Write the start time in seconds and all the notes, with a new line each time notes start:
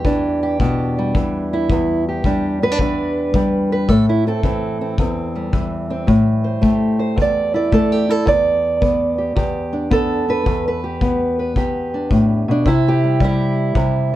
Already playing: E2 G3 G4
0.05 E3 D4, kick
0.43 G4
0.60 B2 D4, kick
0.98 G3
1.15 E3, kick
1.53 E4
1.70 E2, kick
2.09 G4
2.24 G3 D4, kick
2.62 B3 B4
2.72 D4
2.79 E2 D4, kick
3.34 G3, kick
3.72 B4
3.88 A2 A4, kick
4.09 E4
4.27 C4 A4
4.43 E3 C4, kick
4.81 C4
4.98 E2 C4, kick
5.35 G3
5.53 E3, kick
5.90 C4
6.07 A2, kick
6.44 C5
6.61 A3 G4, kick
6.99 C5
7.16 E2, kick
7.22 D5
7.54 E4 D5
7.72 A3 A4, kick
7.92 G4
8.09 E4 A4
8.26 E2 D5, kick
8.81 B3, kick
9.18 G4
9.36 E2 G4, kick
9.73 D4
9.90 B3 A4, kick
10.29 D4 B4
10.46 E2, kick
10.68 B4
10.84 G4
11.01 B3, kick
11.39 B4
11.56 E2 G4, kick
11.94 D4
12.11 A2, kick
12.48 B2 D4
12.66 C3 E4, kick
12.88 G4
13.04 G3
13.20 G3 E4, kick
13.75 C3 G3, kick